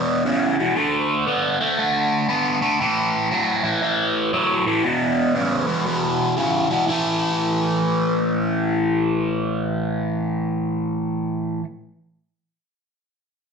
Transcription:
0.00 0.22 E2 medium
0.00 0.23 B2 medium
0.25 0.55 E2 medium
0.25 0.55 C#3 loud
0.59 0.75 E2 medium
0.59 0.75 B2 medium
0.76 1.24 D3 medium
0.76 1.24 A3 medium
1.27 1.57 D3 medium
1.27 1.57 B3 medium
1.61 1.77 D3 medium
1.61 1.77 A3 medium
1.79 2.26 D3 medium
1.79 2.26 A3 medium
2.29 2.59 D3 medium
2.29 2.59 B3 loud
2.62 2.78 D3 medium
2.62 2.79 A3 medium
2.80 3.28 A2 medium
2.80 3.28 E3 medium
3.31 3.61 A2 medium
3.31 3.61 F#3 medium
3.64 3.81 A2 medium
3.64 3.81 E3 medium
3.82 4.30 A2 medium
3.82 4.30 E3 medium
4.33 4.63 A2 medium
4.33 4.63 F#3 medium
4.66 4.83 A2 medium
4.66 4.83 E3 medium
4.84 5.32 E2 medium
4.84 5.32 B2 medium
5.34 5.65 E2 medium
5.34 5.65 C#3 medium
5.66 5.84 E2 medium
5.66 5.84 B2 medium
5.85 6.34 E2 medium
5.85 6.34 B2 medium
6.37 6.67 E2 medium
6.37 6.67 C#3 medium
6.70 6.87 E2 medium
6.70 6.86 B2 medium
6.87 11.60 A2 medium
6.87 11.63 E3 medium
6.87 11.64 A3 medium

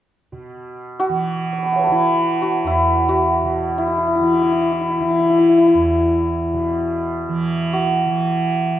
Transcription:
0.32 3.43 B2 soft
1.00 1.86 F#4 medium
1.09 1.88 E3 soft
1.53 3.22 C#6 soft
1.58 3.38 B5 soft
1.63 3.80 F#5 soft
1.63 3.56 A5 soft
1.72 4.32 C#5 soft
1.72 4.02 E5 soft
1.79 4.52 B4 soft
1.84 2.42 F#4 soft
1.84 4.77 A4 soft
1.88 4.19 E3 soft
1.88 2.67 E4 medium
2.42 3.08 F#4 medium
2.64 5.74 E2 soft
2.64 3.78 E4 medium
3.09 6.33 F#4 medium
3.43 6.53 B2 soft
3.78 3.87 E4 medium
3.87 3.97 E4 soft
3.98 4.07 E4 soft
4.07 4.15 E4 soft
4.15 5.00 E3 soft
4.15 4.23 E4 soft
4.23 4.34 E4 soft
4.34 4.42 E4 soft
4.43 4.52 E4 soft
4.52 4.61 E4 soft
4.61 4.71 E4 soft
4.72 4.81 E4 soft
4.81 4.90 E4 soft
4.90 5.01 E4 soft
5.00 7.29 E3 soft
5.00 5.10 E4 soft
5.10 5.19 E4 soft
5.19 5.29 E4 soft
5.30 5.38 E4 soft
5.38 5.49 E4 soft
5.49 5.58 E4 soft
5.58 5.67 E4 soft
5.67 8.80 E4 soft
5.74 8.80 E2 soft
6.54 8.80 B2 soft
7.29 8.06 E3 medium
7.73 8.80 F#4 medium
8.06 8.80 E3 soft

